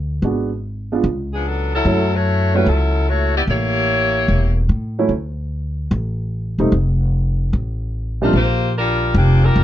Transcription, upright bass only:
0, 0, Header, 1, 2, 480
1, 0, Start_track
1, 0, Tempo, 405405
1, 278, Time_signature, 4, 2, 24, 8
1, 11411, End_track
2, 0, Start_track
2, 0, Title_t, "Upright bass"
2, 0, Program_c, 0, 32
2, 0, Note_on_c, 0, 38, 77
2, 221, Note_off_c, 0, 38, 0
2, 262, Note_on_c, 0, 32, 67
2, 1183, Note_off_c, 0, 32, 0
2, 1227, Note_on_c, 0, 37, 75
2, 2146, Note_off_c, 0, 37, 0
2, 2191, Note_on_c, 0, 42, 69
2, 3108, Note_off_c, 0, 42, 0
2, 3152, Note_on_c, 0, 37, 75
2, 4069, Note_off_c, 0, 37, 0
2, 4112, Note_on_c, 0, 33, 69
2, 5028, Note_off_c, 0, 33, 0
2, 5070, Note_on_c, 0, 28, 81
2, 5521, Note_off_c, 0, 28, 0
2, 5553, Note_on_c, 0, 45, 79
2, 6003, Note_off_c, 0, 45, 0
2, 6023, Note_on_c, 0, 38, 70
2, 6944, Note_off_c, 0, 38, 0
2, 6996, Note_on_c, 0, 33, 82
2, 7752, Note_off_c, 0, 33, 0
2, 7796, Note_on_c, 0, 28, 63
2, 7945, Note_off_c, 0, 28, 0
2, 7954, Note_on_c, 0, 29, 75
2, 8869, Note_off_c, 0, 29, 0
2, 8916, Note_on_c, 0, 33, 78
2, 9829, Note_off_c, 0, 33, 0
2, 9864, Note_on_c, 0, 34, 70
2, 10782, Note_off_c, 0, 34, 0
2, 10825, Note_on_c, 0, 29, 79
2, 11276, Note_off_c, 0, 29, 0
2, 11313, Note_on_c, 0, 29, 78
2, 11411, Note_off_c, 0, 29, 0
2, 11411, End_track
0, 0, End_of_file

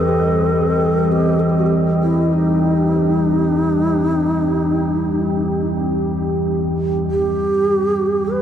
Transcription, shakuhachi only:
0, 0, Header, 1, 2, 480
1, 0, Start_track
1, 0, Tempo, 1200000
1, 927, Time_signature, 4, 2, 24, 8
1, 3368, End_track
2, 0, Start_track
2, 0, Title_t, "Shakuhachi"
2, 0, Program_c, 0, 77
2, 0, Note_on_c, 0, 69, 93
2, 448, Note_on_c, 0, 67, 87
2, 454, Note_off_c, 0, 69, 0
2, 558, Note_on_c, 0, 69, 71
2, 564, Note_off_c, 0, 67, 0
2, 598, Note_on_c, 0, 67, 73
2, 604, Note_off_c, 0, 69, 0
2, 636, Note_on_c, 0, 66, 72
2, 642, Note_off_c, 0, 67, 0
2, 665, Note_on_c, 0, 67, 71
2, 671, Note_off_c, 0, 66, 0
2, 700, Note_off_c, 0, 67, 0
2, 810, Note_on_c, 0, 64, 72
2, 934, Note_on_c, 0, 63, 89
2, 940, Note_off_c, 0, 64, 0
2, 2370, Note_off_c, 0, 63, 0
2, 2843, Note_on_c, 0, 67, 97
2, 3329, Note_on_c, 0, 71, 100
2, 3335, Note_off_c, 0, 67, 0
2, 3368, Note_off_c, 0, 71, 0
2, 3368, End_track
0, 0, End_of_file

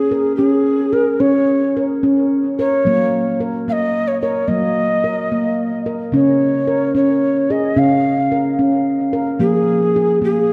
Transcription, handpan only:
0, 0, Header, 1, 2, 480
1, 0, Start_track
1, 0, Tempo, 546448
1, 1067, Time_signature, 6, 3, 24, 8
1, 9249, End_track
2, 0, Start_track
2, 0, Title_t, "Handpan"
2, 0, Program_c, 0, 114
2, 0, Note_on_c, 0, 61, 78
2, 100, Note_on_c, 0, 70, 72
2, 329, Note_off_c, 0, 61, 0
2, 340, Note_on_c, 0, 61, 74
2, 343, Note_off_c, 0, 70, 0
2, 815, Note_on_c, 0, 68, 76
2, 824, Note_off_c, 0, 61, 0
2, 1055, Note_on_c, 0, 61, 88
2, 1062, Note_off_c, 0, 68, 0
2, 1543, Note_off_c, 0, 61, 0
2, 1552, Note_on_c, 0, 70, 68
2, 1785, Note_on_c, 0, 61, 78
2, 1791, Note_off_c, 0, 70, 0
2, 2268, Note_off_c, 0, 61, 0
2, 2276, Note_on_c, 0, 70, 75
2, 2504, Note_on_c, 0, 54, 74
2, 2514, Note_off_c, 0, 70, 0
2, 2520, Note_on_c, 0, 58, 96
2, 2990, Note_on_c, 0, 70, 70
2, 2995, Note_off_c, 0, 58, 0
2, 3230, Note_off_c, 0, 70, 0
2, 3233, Note_on_c, 0, 58, 78
2, 3712, Note_off_c, 0, 58, 0
2, 3714, Note_on_c, 0, 70, 73
2, 3918, Note_off_c, 0, 54, 0
2, 3937, Note_on_c, 0, 58, 92
2, 3946, Note_on_c, 0, 54, 77
2, 3952, Note_off_c, 0, 70, 0
2, 4423, Note_off_c, 0, 58, 0
2, 4427, Note_on_c, 0, 70, 72
2, 4668, Note_off_c, 0, 70, 0
2, 4670, Note_on_c, 0, 58, 81
2, 5149, Note_on_c, 0, 70, 71
2, 5150, Note_off_c, 0, 58, 0
2, 5358, Note_off_c, 0, 54, 0
2, 5377, Note_on_c, 0, 49, 78
2, 5389, Note_off_c, 0, 70, 0
2, 5390, Note_on_c, 0, 61, 91
2, 5863, Note_on_c, 0, 70, 70
2, 5869, Note_off_c, 0, 61, 0
2, 6102, Note_on_c, 0, 61, 79
2, 6105, Note_off_c, 0, 70, 0
2, 6584, Note_off_c, 0, 61, 0
2, 6591, Note_on_c, 0, 68, 74
2, 6792, Note_off_c, 0, 49, 0
2, 6821, Note_on_c, 0, 61, 91
2, 6823, Note_on_c, 0, 49, 78
2, 6828, Note_off_c, 0, 68, 0
2, 7303, Note_off_c, 0, 61, 0
2, 7306, Note_on_c, 0, 70, 74
2, 7545, Note_off_c, 0, 70, 0
2, 7546, Note_on_c, 0, 61, 76
2, 8021, Note_on_c, 0, 70, 73
2, 8025, Note_off_c, 0, 61, 0
2, 8234, Note_off_c, 0, 49, 0
2, 8252, Note_on_c, 0, 53, 79
2, 8259, Note_on_c, 0, 58, 93
2, 8262, Note_off_c, 0, 70, 0
2, 8741, Note_off_c, 0, 58, 0
2, 8749, Note_on_c, 0, 68, 77
2, 8973, Note_on_c, 0, 58, 79
2, 8986, Note_off_c, 0, 68, 0
2, 9249, Note_off_c, 0, 53, 0
2, 9249, Note_off_c, 0, 58, 0
2, 9249, End_track
0, 0, End_of_file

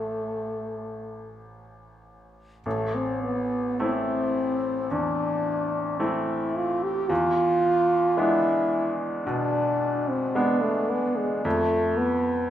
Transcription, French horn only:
0, 0, Header, 1, 2, 480
1, 0, Start_track
1, 0, Key_signature, 0, "minor"
1, 0, Tempo, 1229508
1, 1035, Time_signature, 4, 2, 24, 8
1, 1036, Tempo, 1138520
1, 1516, Tempo, 1102941
1, 2956, Tempo, 1086957
1, 5340, End_track
2, 0, Start_track
2, 0, Title_t, "French horn"
2, 0, Program_c, 0, 60
2, 0, Note_on_c, 0, 57, 42
2, 557, Note_off_c, 0, 57, 0
2, 1040, Note_on_c, 0, 57, 61
2, 1161, Note_on_c, 0, 60, 57
2, 1167, Note_off_c, 0, 57, 0
2, 1278, Note_off_c, 0, 60, 0
2, 1280, Note_on_c, 0, 59, 60
2, 1525, Note_on_c, 0, 60, 71
2, 1531, Note_off_c, 0, 59, 0
2, 2005, Note_on_c, 0, 62, 65
2, 2011, Note_off_c, 0, 60, 0
2, 2474, Note_off_c, 0, 62, 0
2, 2476, Note_on_c, 0, 64, 57
2, 2723, Note_on_c, 0, 65, 67
2, 2729, Note_off_c, 0, 64, 0
2, 2837, Note_on_c, 0, 67, 66
2, 2844, Note_off_c, 0, 65, 0
2, 2953, Note_on_c, 0, 65, 81
2, 2960, Note_off_c, 0, 67, 0
2, 3434, Note_on_c, 0, 64, 78
2, 3440, Note_off_c, 0, 65, 0
2, 3795, Note_off_c, 0, 64, 0
2, 3904, Note_on_c, 0, 62, 74
2, 4274, Note_on_c, 0, 60, 67
2, 4280, Note_off_c, 0, 62, 0
2, 4398, Note_on_c, 0, 59, 68
2, 4405, Note_off_c, 0, 60, 0
2, 4507, Note_on_c, 0, 57, 67
2, 4514, Note_off_c, 0, 59, 0
2, 4633, Note_on_c, 0, 59, 68
2, 4639, Note_off_c, 0, 57, 0
2, 4749, Note_on_c, 0, 56, 59
2, 4756, Note_off_c, 0, 59, 0
2, 4873, Note_off_c, 0, 56, 0
2, 4877, Note_on_c, 0, 57, 81
2, 5107, Note_on_c, 0, 59, 69
2, 5114, Note_off_c, 0, 57, 0
2, 5340, Note_off_c, 0, 59, 0
2, 5340, End_track
0, 0, End_of_file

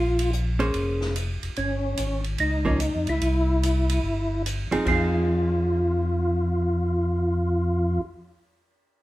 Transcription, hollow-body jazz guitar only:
0, 0, Header, 1, 2, 480
1, 0, Start_track
1, 0, Key_signature, -4, "minor"
1, 0, Tempo, 411805
1, 1829, Time_signature, 4, 2, 24, 8
1, 10520, End_track
2, 0, Start_track
2, 0, Title_t, "Hollow-body jazz guitar"
2, 0, Program_c, 0, 26
2, 689, Note_on_c, 0, 58, 55
2, 691, Note_on_c, 0, 61, 58
2, 695, Note_on_c, 0, 68, 58
2, 699, Note_on_c, 0, 72, 61
2, 1310, Note_off_c, 0, 58, 0
2, 1311, Note_off_c, 0, 61, 0
2, 1313, Note_off_c, 0, 68, 0
2, 1315, Note_off_c, 0, 72, 0
2, 3087, Note_on_c, 0, 53, 56
2, 3093, Note_on_c, 0, 58, 65
2, 3104, Note_on_c, 0, 61, 60
2, 3246, Note_off_c, 0, 53, 0
2, 3249, Note_off_c, 0, 58, 0
2, 3254, Note_off_c, 0, 61, 0
2, 5495, Note_on_c, 0, 53, 50
2, 5503, Note_on_c, 0, 60, 60
2, 5506, Note_on_c, 0, 68, 58
2, 5507, Note_on_c, 0, 63, 58
2, 5640, Note_off_c, 0, 53, 0
2, 5654, Note_off_c, 0, 60, 0
2, 5654, Note_on_c, 0, 53, 50
2, 5656, Note_off_c, 0, 68, 0
2, 5657, Note_off_c, 0, 63, 0
2, 5667, Note_on_c, 0, 60, 55
2, 5677, Note_on_c, 0, 63, 56
2, 5690, Note_on_c, 0, 68, 54
2, 9347, Note_off_c, 0, 53, 0
2, 9360, Note_off_c, 0, 60, 0
2, 9370, Note_off_c, 0, 63, 0
2, 9383, Note_off_c, 0, 68, 0
2, 10520, End_track
0, 0, End_of_file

